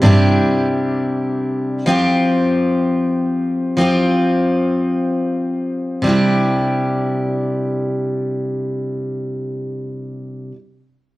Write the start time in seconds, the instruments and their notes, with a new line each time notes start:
0.02 double bass G2, steel-string acoustic guitar C3 G3 D4 E4
0.06 steel-string acoustic guitar G4
1.86 steel-string acoustic guitar F3 C4 F4
1.90 steel-string acoustic guitar G4
3.76 steel-string acoustic guitar F3 C4 F4
3.81 steel-string acoustic guitar G4
6.02 steel-string acoustic guitar C3 G3 D4
6.07 steel-string acoustic guitar E4 G4